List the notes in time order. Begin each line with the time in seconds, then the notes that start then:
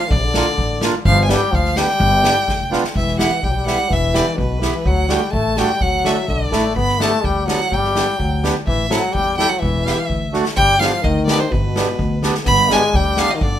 Already playing: F3 F5
0.09 A#1 D3 D5, kick
0.17 C3
0.25 D3
0.34 A#3 D4 F4, snare
0.58 A1, kick
0.81 A#3 D4 F4, snare
1.05 G1 F3 F5, kick
1.24 G#5
1.29 G3 B3 D4 G4 G5, snare
1.52 D2 F3 F5, kick
1.65 snare
1.76 G3 B3 D4 G4 G5, snare
1.89 snare
2.00 G1, kick
2.23 B3 D4 G4, snare
2.48 F1, kick, snare
2.71 B3 D4 F4, snare
2.84 snare
2.95 E1 E3 E5, kick
3.08 snare
3.18 B3 E4 G4 F#5, snare
3.43 B1 G3 G5, kick
3.50 F#3
3.55 G3
3.66 B3 E4 G4 F#5, snare
3.89 E1 E3 E5, kick
4.13 B3 E4 G4 D5, snare
4.36 B1 B2 B4, kick
4.60 E3 B3 E4 G4, snare
4.85 D2 F#3 F#5, kick
5.08 G3 A3 D4 F#4 G5, snare
5.33 A1 A3 A5, kick
5.57 G3 A3 D4 F#4 G5, snare
5.75 G3
5.81 D2 F#3 F#5, kick
6.04 A3 D4 F#4 E5, snare
6.28 B1 D3 D5, kick
6.51 A1 A3 D4 E4, snare
6.76 G1 B3 B5, kick
6.88 snare
6.99 A3 B3 D4 G4 A5, snare
7.23 D2 G3 G5, kick
7.46 F#3 B3 D4 G4 F#5, snare
7.61 snare
7.71 G1 G3 G5, kick
7.84 snare
7.95 B3 D4 G4, snare
8.19 D2 F#3, kick
8.44 B3 D4 G4, snare
8.67 A1 E3 E5, kick
8.90 F#3 C4 E4 A4 F#5, snare
9.13 E2 G3 G5, kick
9.37 G3 C4 E4 A4 G5, snare
9.48 F#3 F#5
9.60 E1 E3 E5, kick
9.86 B3 E4 G4, snare
10.09 D2, kick
10.33 A3 D4 F#4, snare
10.45 snare
10.56 G1 G3 G5, kick
10.79 F3 B3 D4 G4 F5, snare
10.93 snare
11.02 D2 D#3 D#5, kick
11.27 B3 D4 G4 D5, snare
11.40 C5
11.50 G1 B2 B4, kick
11.57 C3
11.64 B2
11.76 B3 D4 G4, snare
11.99 D2, kick
12.23 B3 D4 G4, snare
12.34 snare
12.44 G1 B3 B5, kick, snare
12.70 G#3 B3 D4 G4 G#5, snare
12.82 snare
12.94 D2 G3 G5, kick
13.17 B3 D4 G4 F5, snare
13.31 D#3 D#5
13.35 D#5 F5
13.41 G1 D3 D5, kick